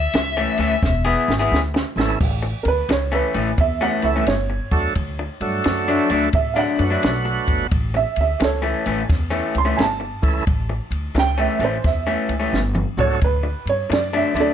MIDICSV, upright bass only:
0, 0, Header, 1, 2, 480
1, 0, Start_track
1, 0, Tempo, 688073
1, 1540, Time_signature, 4, 2, 24, 8
1, 10141, End_track
2, 0, Start_track
2, 0, Title_t, "Upright bass"
2, 0, Program_c, 0, 32
2, 96, Note_on_c, 0, 37, 95
2, 312, Note_off_c, 0, 37, 0
2, 408, Note_on_c, 0, 38, 85
2, 525, Note_off_c, 0, 38, 0
2, 576, Note_on_c, 0, 28, 99
2, 792, Note_off_c, 0, 28, 0
2, 893, Note_on_c, 0, 32, 97
2, 1008, Note_off_c, 0, 32, 0
2, 1056, Note_on_c, 0, 38, 104
2, 1273, Note_off_c, 0, 38, 0
2, 1366, Note_on_c, 0, 32, 94
2, 1484, Note_off_c, 0, 32, 0
2, 1539, Note_on_c, 0, 33, 97
2, 1754, Note_off_c, 0, 33, 0
2, 1850, Note_on_c, 0, 38, 91
2, 1966, Note_off_c, 0, 38, 0
2, 2014, Note_on_c, 0, 37, 86
2, 2231, Note_off_c, 0, 37, 0
2, 2333, Note_on_c, 0, 33, 88
2, 2449, Note_off_c, 0, 33, 0
2, 2495, Note_on_c, 0, 40, 88
2, 2712, Note_off_c, 0, 40, 0
2, 2812, Note_on_c, 0, 37, 81
2, 2928, Note_off_c, 0, 37, 0
2, 2978, Note_on_c, 0, 31, 91
2, 3194, Note_off_c, 0, 31, 0
2, 3290, Note_on_c, 0, 40, 85
2, 3407, Note_off_c, 0, 40, 0
2, 3460, Note_on_c, 0, 38, 94
2, 3676, Note_off_c, 0, 38, 0
2, 3771, Note_on_c, 0, 43, 87
2, 3888, Note_off_c, 0, 43, 0
2, 3947, Note_on_c, 0, 42, 87
2, 4161, Note_off_c, 0, 42, 0
2, 4257, Note_on_c, 0, 38, 87
2, 4372, Note_off_c, 0, 38, 0
2, 4419, Note_on_c, 0, 45, 85
2, 4635, Note_off_c, 0, 45, 0
2, 4738, Note_on_c, 0, 42, 87
2, 4853, Note_off_c, 0, 42, 0
2, 4909, Note_on_c, 0, 35, 94
2, 5122, Note_off_c, 0, 35, 0
2, 5214, Note_on_c, 0, 31, 88
2, 5330, Note_off_c, 0, 31, 0
2, 5383, Note_on_c, 0, 33, 102
2, 5598, Note_off_c, 0, 33, 0
2, 5699, Note_on_c, 0, 38, 84
2, 5814, Note_off_c, 0, 38, 0
2, 5863, Note_on_c, 0, 37, 93
2, 6078, Note_off_c, 0, 37, 0
2, 6182, Note_on_c, 0, 33, 89
2, 6295, Note_off_c, 0, 33, 0
2, 6343, Note_on_c, 0, 40, 94
2, 6558, Note_off_c, 0, 40, 0
2, 6661, Note_on_c, 0, 37, 87
2, 6775, Note_off_c, 0, 37, 0
2, 6826, Note_on_c, 0, 31, 92
2, 7040, Note_off_c, 0, 31, 0
2, 7134, Note_on_c, 0, 37, 93
2, 7250, Note_off_c, 0, 37, 0
2, 7304, Note_on_c, 0, 33, 101
2, 7519, Note_off_c, 0, 33, 0
2, 7608, Note_on_c, 0, 38, 82
2, 7726, Note_off_c, 0, 38, 0
2, 7774, Note_on_c, 0, 37, 88
2, 7993, Note_off_c, 0, 37, 0
2, 8088, Note_on_c, 0, 33, 90
2, 8206, Note_off_c, 0, 33, 0
2, 8262, Note_on_c, 0, 40, 91
2, 8478, Note_off_c, 0, 40, 0
2, 8572, Note_on_c, 0, 37, 82
2, 8689, Note_off_c, 0, 37, 0
2, 8738, Note_on_c, 0, 31, 98
2, 8955, Note_off_c, 0, 31, 0
2, 9050, Note_on_c, 0, 37, 93
2, 9168, Note_off_c, 0, 37, 0
2, 9221, Note_on_c, 0, 38, 96
2, 9437, Note_off_c, 0, 38, 0
2, 9527, Note_on_c, 0, 43, 85
2, 9646, Note_off_c, 0, 43, 0
2, 9696, Note_on_c, 0, 42, 86
2, 9914, Note_off_c, 0, 42, 0
2, 10007, Note_on_c, 0, 38, 83
2, 10126, Note_off_c, 0, 38, 0
2, 10141, End_track
0, 0, End_of_file